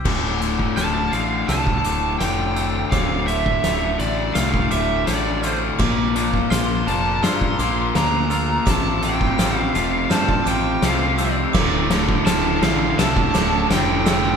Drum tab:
CC |x---------------|----------------|x---------------|----------------|
HH |--x-x-x-x-x-x-x-|x-x-x-x-x-x-x-x-|--x-x-x-x-x-x-x-|x-x-x-x-x-x-x-x-|
SD |o---o---o---o---|o---o---o---o---|o---o---o---o---|o---o---o---o---|
BD |o--o-----o------|o--o-----o------|o--o-----o------|o--o-----o------|

CC |x---------------|
HH |--x-x-x-x-x-x-x-|
SD |o-o-o-o-o-o-o-o-|
BD |o--o-----o------|